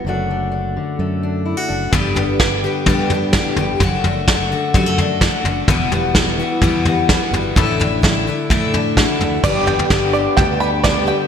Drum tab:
CC |----------------|----------------|----------------|----------------|
SD |----------------|----o-------o---|----o-------o---|----o-------o---|
FT |----------------|o-o-----o-o---o-|o-o-----o-o---o-|o-o-----o-o---o-|
BD |----------------|o---o---o---o---|o---o---o---o---|o---o---o---o---|

CC |----------------|x---------------|
SD |----o-------o---|----o-------o---|
FT |o-o-----o-o---o-|o-oo----o-------|
BD |o---o---o---o---|o---o---o---o---|